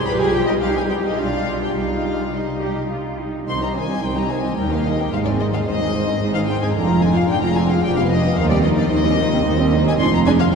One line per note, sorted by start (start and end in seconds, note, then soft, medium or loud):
0.05 0.60 B1 medium
0.05 0.60 G3 medium
0.05 0.60 F4 medium
0.05 0.22 B4 loud
0.05 0.11 B5 loud
0.09 0.62 G4 loud
0.21 0.36 G#4 loud
0.21 0.35 G#5 loud
0.34 0.41 G4 medium
0.34 0.49 G5 loud
0.47 0.55 D#4 medium
0.47 0.53 D#5 loud
0.61 1.19 C2 medium
0.61 1.18 G3 medium
0.61 1.19 D#4 medium
0.61 0.68 F4 medium
0.61 1.18 G4 medium
0.61 0.76 F5 loud
0.75 0.90 G#4 medium
0.75 0.82 G#5 loud
0.90 1.05 G4 medium
0.90 0.96 G5 medium
1.04 1.19 D#4 medium
1.04 1.19 D#5 medium
1.17 1.76 B1 medium
1.17 1.75 G3 medium
1.17 1.75 D4 medium
1.17 1.77 D4 medium
1.17 1.61 F4 medium
1.17 1.61 F5 loud
1.60 1.76 G4 medium
1.60 1.76 G5 medium
1.76 3.27 C2 medium
1.76 2.32 G3 medium
1.76 2.33 D#4 medium
1.76 2.28 D#4 medium
1.76 2.33 F4 medium
1.76 2.33 F5 medium
2.33 3.25 G3 medium
2.33 2.90 D#4 medium
2.33 2.41 D#4 medium
2.33 3.25 D#4 medium
2.33 2.91 D#5 medium
2.61 2.90 G4 medium
2.91 3.19 F4 medium
3.19 3.48 D#4 medium
3.47 3.96 C2 medium
3.47 3.61 D#3 medium
3.47 3.60 D#4 medium
3.47 3.61 D#4 medium
3.47 3.60 C5 medium
3.47 3.60 C6 loud
3.61 3.75 G3 medium
3.61 3.75 C4 medium
3.61 3.75 G4 medium
3.61 3.75 D#5 medium
3.61 3.67 A#5 medium
3.75 3.89 D#3 medium
3.75 3.88 D#4 medium
3.75 3.89 D#4 medium
3.75 3.88 C5 medium
3.75 4.02 G#5 loud
3.88 4.03 G3 medium
3.88 4.03 C4 medium
3.88 4.02 G4 medium
3.88 4.02 D#5 medium
4.02 4.50 C2 medium
4.02 4.51 C2 medium
4.02 4.16 D#3 medium
4.02 4.15 D#4 medium
4.02 4.16 D#4 medium
4.02 4.15 C5 medium
4.02 4.17 G5 medium
4.15 4.30 G3 medium
4.15 4.31 C4 medium
4.15 4.29 G4 medium
4.15 4.30 D#5 medium
4.15 4.30 A#5 loud
4.30 4.44 D#3 medium
4.30 4.44 D#4 medium
4.30 4.44 C5 medium
4.30 4.58 G#5 medium
4.43 4.56 G3 medium
4.43 4.58 C4 medium
4.43 4.57 G4 medium
4.43 4.57 D#5 medium
4.57 5.05 D#2 medium
4.57 4.70 G3 medium
4.57 4.70 D#4 medium
4.57 4.70 A#4 medium
4.57 4.72 G5 medium
4.71 4.85 D#3 medium
4.71 4.85 A#3 medium
4.71 4.85 G4 medium
4.71 4.85 D#5 medium
4.71 4.85 F5 medium
4.84 4.98 G3 medium
4.84 4.98 D#4 medium
4.84 4.99 A#4 medium
4.84 4.98 D#5 loud
4.98 5.12 D#3 medium
4.98 5.12 A#3 medium
4.98 5.12 G4 medium
4.98 5.12 D#5 medium
4.98 5.12 G5 medium
5.12 5.59 G#1 medium
5.12 5.60 G#2 medium
5.12 5.25 G#3 medium
5.12 5.25 D#4 medium
5.12 5.25 C5 medium
5.12 5.17 F5 loud
5.24 5.39 D#3 medium
5.24 5.39 C4 medium
5.24 5.39 G#4 medium
5.24 5.30 D5 medium
5.24 5.40 D#5 medium
5.40 5.53 G#3 medium
5.40 5.53 D#4 medium
5.40 5.53 C5 medium
5.40 5.45 D#5 loud
5.53 5.66 D#3 medium
5.53 5.66 C4 medium
5.53 5.66 G#4 medium
5.53 5.66 D#5 medium
5.53 5.58 F5 medium
5.66 6.14 G#1 medium
5.66 6.14 G#2 medium
5.66 5.79 G#3 medium
5.66 5.79 D#4 medium
5.66 5.79 C5 medium
5.66 6.33 D#5 loud
5.79 5.94 D#3 medium
5.79 5.94 C4 medium
5.79 5.93 G#4 medium
5.79 5.93 D#5 medium
5.94 6.07 G#3 medium
5.94 6.07 D#4 medium
5.94 6.07 C5 medium
6.07 6.21 D#3 medium
6.07 6.21 C4 medium
6.07 6.21 G#4 medium
6.07 6.21 D#5 medium
6.20 6.69 G#1 medium
6.20 6.68 G#2 medium
6.20 6.33 G#3 medium
6.20 6.33 D#4 medium
6.20 6.34 C5 medium
6.34 6.48 D#3 medium
6.34 6.48 C4 medium
6.34 6.49 G#4 medium
6.34 6.49 D#5 medium
6.34 6.39 F5 loud
6.46 6.61 G#3 medium
6.46 6.61 D#4 medium
6.46 6.62 C5 medium
6.46 6.61 G5 loud
6.60 6.74 D#3 medium
6.60 6.75 C4 medium
6.60 6.76 G#4 medium
6.60 6.76 D#5 medium
6.60 6.75 G#5 medium
6.73 7.23 F1 medium
6.73 7.22 F2 medium
6.73 6.87 D3 medium
6.73 6.87 D4 medium
6.73 6.88 D5 medium
6.73 7.00 A#5 loud
6.77 6.89 F4 medium
6.87 7.01 F3 medium
6.87 7.01 F4 medium
6.87 7.03 G#4 medium
6.87 7.03 F5 medium
7.00 7.15 D3 medium
7.00 7.15 D4 medium
7.00 7.15 G#5 loud
7.04 7.17 F4 medium
7.04 7.17 D5 medium
7.14 7.28 F3 medium
7.14 7.28 F4 medium
7.14 7.30 G#4 medium
7.14 7.28 F5 loud
7.14 7.30 F5 medium
7.27 7.77 F1 loud
7.27 7.77 F2 medium
7.27 7.41 D3 medium
7.27 7.41 D4 medium
7.27 7.42 F4 medium
7.27 7.42 D5 medium
7.27 7.42 G5 loud
7.41 7.56 F3 medium
7.41 7.56 F4 medium
7.41 7.55 A#5 loud
7.45 7.58 G#4 medium
7.45 7.58 F5 medium
7.54 7.70 D3 medium
7.54 7.70 D4 medium
7.54 7.69 G#5 loud
7.59 7.71 F4 medium
7.59 7.71 D5 medium
7.69 7.82 F3 medium
7.69 7.83 F4 medium
7.69 7.84 G#4 medium
7.69 7.83 F5 loud
7.69 7.84 F5 medium
7.83 8.31 F1 loud
7.83 8.31 F2 medium
7.83 7.96 F3 medium
7.83 7.96 D4 medium
7.83 7.97 G4 medium
7.83 7.98 D5 medium
7.83 7.97 G5 loud
7.96 8.10 G3 medium
7.96 8.10 B3 medium
7.96 8.11 B4 medium
7.96 8.01 F5 loud
7.96 8.11 F5 medium
8.08 8.24 F3 medium
8.08 8.24 D4 medium
8.08 8.25 G4 medium
8.08 8.25 D5 medium
8.08 8.36 D#5 loud
8.23 8.37 G3 medium
8.23 8.37 B3 medium
8.23 8.38 B4 medium
8.23 8.38 F5 medium
8.36 8.85 D#2 loud
8.36 8.49 D#3 medium
8.36 8.49 D#4 medium
8.36 8.50 D#4 medium
8.36 8.50 C5 medium
8.36 8.50 F5 loud
8.49 8.64 G3 medium
8.49 8.64 C4 medium
8.49 8.64 G4 medium
8.49 8.63 D5 loud
8.49 8.64 D#5 medium
8.62 8.77 D#3 medium
8.62 8.78 D#4 medium
8.62 8.78 C5 medium
8.62 8.68 D#5 loud
8.76 8.91 G3 medium
8.76 8.91 C4 medium
8.76 8.91 G4 medium
8.76 8.90 D5 loud
8.76 8.91 D#5 medium
8.90 9.39 D#2 loud
8.90 9.03 D#3 medium
8.90 9.04 D#4 medium
8.90 9.04 C5 medium
8.90 9.84 D#5 loud
9.05 9.19 G3 medium
9.05 9.19 C4 medium
9.05 9.19 G4 medium
9.05 9.19 D#5 medium
9.17 9.32 D#3 medium
9.17 9.32 D#4 medium
9.17 9.33 C5 medium
9.31 9.46 G3 medium
9.31 9.46 C4 medium
9.31 9.46 G4 medium
9.31 9.46 D#5 medium
9.45 9.94 D#2 loud
9.45 9.94 D#2 medium
9.45 9.58 D#3 medium
9.45 9.58 D#4 medium
9.45 9.58 C5 medium
9.59 9.73 G3 medium
9.59 9.73 C4 medium
9.59 9.73 G4 medium
9.59 9.73 D#5 medium
9.73 9.87 D#3 medium
9.73 9.87 D#4 medium
9.73 9.87 C5 medium
9.87 10.01 G3 medium
9.87 10.00 C4 medium
9.87 10.00 G4 medium
9.87 10.00 D#5 medium
9.87 9.92 G#5 loud
9.99 10.46 F1 loud
9.99 10.47 F2 loud
9.99 10.08 F3 medium
9.99 10.08 D4 medium
9.99 10.07 G#4 medium
9.99 10.07 D5 medium
9.99 10.13 C6 loud
10.14 10.19 A#5 loud
10.25 10.34 F3 medium
10.25 10.34 D4 medium
10.25 10.34 G#4 medium
10.25 10.34 D5 medium
10.25 10.31 G#5 loud
10.39 10.45 F5 loud